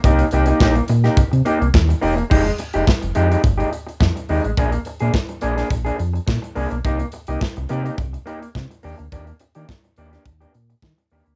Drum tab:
CC |----------------|x---------------|----------------|----------------|
HH |xxxx-xxxxxxx-xox|-xxx-xxxxxxx-xox|xxxx-xxxxxxx-xox|xxxx-xxxxxxx-xox|
SD |----o--o----o---|----o-------o---|----o--o----o---|----o-------o---|
BD |o---o---o---o---|o---o---o---o---|o---o---o---o---|o---o---o---o---|

CC |----------------|
HH |xxxx-xxxxxxx-xox|
SD |----o--o----o---|
BD |o---o---o---o---|